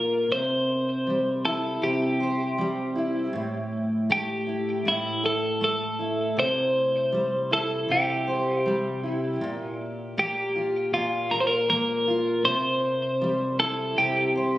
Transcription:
Already playing: steel-string acoustic guitar A#2 A#3 D4 F4 A#4, clean electric guitar A#4
0.31 steel-string acoustic guitar C3, clean electric guitar C5
1.07 steel-string acoustic guitar G3
1.45 steel-string acoustic guitar E4, clean electric guitar A4
1.82 steel-string acoustic guitar C3, clean electric guitar G4
2.20 steel-string acoustic guitar C5
2.58 steel-string acoustic guitar G3
2.95 steel-string acoustic guitar E4
3.33 steel-string acoustic guitar A2
4.10 steel-string acoustic guitar A3, clean electric guitar G4
4.47 steel-string acoustic guitar E4
4.85 steel-string acoustic guitar A2, clean electric guitar E4
5.23 steel-string acoustic guitar A4, clean electric guitar A4
5.61 steel-string acoustic guitar A3, clean electric guitar A4
5.99 steel-string acoustic guitar E4
6.37 steel-string acoustic guitar C3, clean electric guitar C5
7.12 steel-string acoustic guitar G3
7.51 steel-string acoustic guitar E4, clean electric guitar A4
7.89 steel-string acoustic guitar C3, clean electric guitar G4
8.27 steel-string acoustic guitar C5
8.66 steel-string acoustic guitar G3
9.03 steel-string acoustic guitar E4
9.41 steel-string acoustic guitar A#2
10.18 steel-string acoustic guitar A#3, clean electric guitar G4
10.56 steel-string acoustic guitar F4
10.94 steel-string acoustic guitar A#2, clean electric guitar F4
11.31 clean electric guitar A#4, steel-string acoustic guitar A#4
11.40 clean electric guitar C5
11.47 clean electric guitar A#4
11.70 steel-string acoustic guitar A#3, clean electric guitar A#4
12.07 steel-string acoustic guitar F4
12.45 steel-string acoustic guitar C3, clean electric guitar C5
13.21 steel-string acoustic guitar G3
13.60 steel-string acoustic guitar E4, clean electric guitar A4
13.98 steel-string acoustic guitar C3, clean electric guitar G4
14.36 steel-string acoustic guitar C5

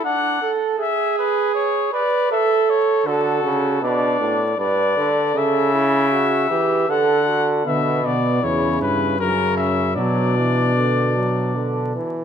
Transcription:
0.04 flugelhorn D4, trumpet F#5
0.42 flugelhorn A4
0.79 flugelhorn G#4, trumpet E5
1.19 trumpet B4
1.55 trumpet C#5
1.93 flugelhorn B4, trumpet D5
2.31 flugelhorn A4, trumpet E5
2.70 trumpet C#5
3.06 trombone D3, flugelhorn F#4, trumpet A4
3.43 trombone C#3
3.82 trombone B2, flugelhorn D4, trumpet D5
4.20 trombone A2
4.58 trombone G2, flugelhorn B4, trumpet D5
4.97 trombone D3
5.35 trombone C#3, flugelhorn A4, trumpet E5
5.74 flugelhorn E4
6.11 flugelhorn F#4
6.50 trombone E3, flugelhorn G4
6.89 trombone D3, flugelhorn A4, trumpet F#5
7.26 flugelhorn F#4
7.65 trombone B2, bass trombone D3, flugelhorn B3, trumpet E5
8.04 bass trombone B2, trumpet D5
8.42 bass trombone E2, trombone C#3, flugelhorn E4, trumpet C#5
8.81 bass trombone G2, trumpet B4
9.19 bass trombone F#2, trombone C#3, flugelhorn C#4, trumpet A#4
9.57 trumpet E5
9.96 bass trombone B2, trombone F#3, flugelhorn D4, trumpet D5
10.37 trombone E3
10.76 trombone D3
11.16 trombone F#3
11.55 trombone D3
11.96 trombone E3

